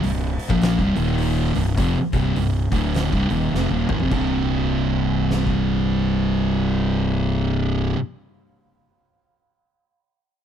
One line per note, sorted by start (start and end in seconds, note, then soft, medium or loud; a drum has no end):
0.03 0.36 C1 medium
0.03 0.32 C2 medium
0.03 0.32 G2 medium
0.03 open hi-hat medium
0.39 open hi-hat medium
0.50 0.77 A#1 medium
0.50 0.78 A#2 loud
0.50 0.78 F3 medium
0.50 0.79 A#3 loud
0.50 kick loud
0.61 snare loud
0.61 open hi-hat medium
0.79 0.96 C1 medium
0.79 0.96 C2 medium
0.79 0.97 G2 loud
0.79 kick medium
0.96 1.51 D#1 medium
0.96 1.54 D#2 medium
0.96 1.54 A#2 medium
0.96 1.55 D#3 medium
0.96 open hi-hat medium
1.18 open hi-hat medium
1.55 1.76 C1 medium
1.55 1.74 C2 medium
1.55 1.74 G2 medium
1.55 open hi-hat soft
1.78 1.94 F1 medium
1.78 1.95 F2 medium
1.78 1.96 C3 medium
1.78 kick medium
1.78 open hi-hat medium
2.13 2.34 C1 medium
2.13 2.36 C2 medium
2.13 2.36 G2 medium
2.13 2.37 C3 loud
2.13 kick medium
2.13 open hi-hat soft
2.36 2.70 C1 medium
2.36 2.65 C2 medium
2.36 2.66 G2 medium
2.36 open hi-hat medium
2.72 3.10 D1 medium
2.72 3.12 D2 medium
2.72 3.12 A2 loud
2.72 3.12 D3 loud
2.72 kick medium
2.72 open hi-hat medium
2.94 snare loud
2.94 open hi-hat medium
3.13 3.29 C1 medium
3.13 3.29 C2 loud
3.13 3.30 G2 loud
3.13 kick loud
3.30 3.51 D#1 medium
3.30 3.53 D#2 medium
3.30 3.53 A#2 medium
3.30 3.53 D#3 loud
3.30 open hi-hat soft
3.53 3.70 F1 medium
3.53 3.71 F2 medium
3.53 3.71 C3 medium
3.53 snare medium
3.70 3.87 D#1 loud
3.70 3.88 D#2 medium
3.70 3.89 A#2 medium
3.89 3.98 G#1 loud
3.89 4.00 G#2 medium
3.89 4.01 D#3 medium
3.89 mid tom medium
3.99 4.10 F1 medium
3.99 4.11 F2 medium
3.99 4.12 C3 loud
3.99 floor tom medium
4.11 7.92 C1 medium
4.11 7.96 C2 medium
4.11 7.97 G2 loud
4.11 kick loud
4.11 crash medium
4.16 7.98 C3 loud
5.31 snare medium
5.47 kick medium